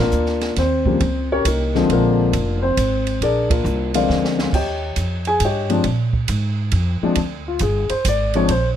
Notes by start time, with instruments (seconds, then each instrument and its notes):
Already playing: upright bass G#1, upright piano A#3 D4
0.00 upright piano F4 A#4
0.11 upright bass D2, hi-hat pedal
0.26 snare
0.41 snare, ride
0.56 upright bass D#2, upright piano C4 C5, kick, snare, ride
0.86 upright piano C#3 F3 G3 A#3, kick
1.00 upright bass C#2, kick, ride
1.32 upright piano C#4 G4 A#4 C#5
1.42 upright bass C2, upright piano A4, kick, hi-hat pedal, ride
1.47 upright piano A#3 D#4 A#4
1.75 upright piano D3 F3 G#3 C4, snare
1.89 upright bass A#1, upright piano A#3 D4 F4 A#4, kick, ride
2.33 upright bass F1, kick, hi-hat pedal, ride
2.62 upright piano C4 C5
2.77 upright bass G#1, kick, hi-hat pedal, ride
3.07 ride
3.21 upright bass A#1, upright piano D4 G#4 A#4 D5, kick, ride
3.50 upright piano A#3 D4 F4 A#4, kick, ride
3.64 upright bass C2, hi-hat pedal
3.94 upright piano D3 F3 G#3 C4 F4 A#4 D5 F5, ride
4.08 upright bass D2, snare
4.25 snare
4.39 snare
4.53 upright bass D#2, upright piano G4 C#5 D#5 G5, kick, crash
4.96 upright bass F2, kick, hi-hat pedal, ride
5.25 upright piano G#4 G#5, ride
5.40 upright bass G2, kick, hi-hat pedal, ride
5.44 upright piano G4 C#5 D#5 G5
5.70 upright piano F3 G#3 C4 D4, ride
5.84 upright bass A#2, kick, ride
6.13 kick
6.28 upright bass G#2, kick, hi-hat pedal, ride
6.72 upright bass F2, kick, ride
7.02 upright piano F3 G#3 C4 D4, muted upright bass stroke
7.15 upright bass D2, kick, ride
7.48 upright piano F4
7.59 upright bass G1, upright piano G#4, kick, hi-hat pedal, ride
7.89 upright piano C5, muted upright bass stroke, ride
8.05 upright bass G#1, upright piano D5, kick, hi-hat pedal, ride
8.34 upright piano F3 G#3 C4 D4 C#5, ride
8.49 upright bass A#1, upright piano C5, kick, ride